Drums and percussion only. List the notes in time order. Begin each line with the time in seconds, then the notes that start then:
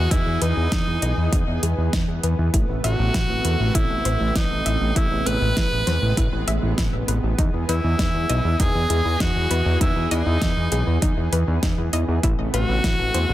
0.11 kick, closed hi-hat
0.42 closed hi-hat
0.72 kick, snare, closed hi-hat
1.02 closed hi-hat
1.32 kick, closed hi-hat
1.63 closed hi-hat
1.93 kick, snare, closed hi-hat
2.23 closed hi-hat
2.54 kick, closed hi-hat
2.84 closed hi-hat
3.14 kick, snare, closed hi-hat
3.45 closed hi-hat
3.75 kick, closed hi-hat
4.05 closed hi-hat
4.36 kick, snare, closed hi-hat
4.66 closed hi-hat
4.96 kick, closed hi-hat
5.27 closed hi-hat
5.57 kick, snare, closed hi-hat
5.87 snare, closed hi-hat
6.17 kick, closed hi-hat
6.48 closed hi-hat
6.78 kick, snare, closed hi-hat
7.08 closed hi-hat
7.38 kick, closed hi-hat
7.69 closed hi-hat
7.99 kick, snare, closed hi-hat
8.30 closed hi-hat
8.60 kick, closed hi-hat
8.90 closed hi-hat
9.20 kick, snare, closed hi-hat
9.51 closed hi-hat
9.81 kick, closed hi-hat
10.11 closed hi-hat
10.42 kick, snare, closed hi-hat
10.72 closed hi-hat
11.02 kick, closed hi-hat
11.33 closed hi-hat
11.63 kick, snare, closed hi-hat
11.93 closed hi-hat
12.23 kick, closed hi-hat
12.54 closed hi-hat
12.84 kick, snare, closed hi-hat
13.14 closed hi-hat